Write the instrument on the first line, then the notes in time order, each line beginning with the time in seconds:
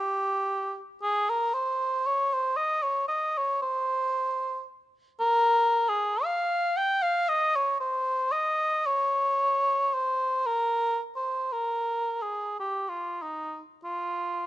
cor anglais
0.00 G4
1.02 G#4
1.30 A#4
1.54 C5
2.07 C#5
2.34 C5
2.57 D#5
2.83 C#5
3.08 D#5
3.37 C#5
3.62 C5
5.20 A#4
5.89 G#4
6.24 F5
6.77 G5
7.03 F5
7.29 D#5
7.56 C#5
7.80 C5
8.32 D#5
8.86 C#5
9.94 C5
10.46 A#4
11.16 C5
11.52 A#4
12.22 G#4
12.60 G4
12.89 F4
13.22 D#4
13.84 F4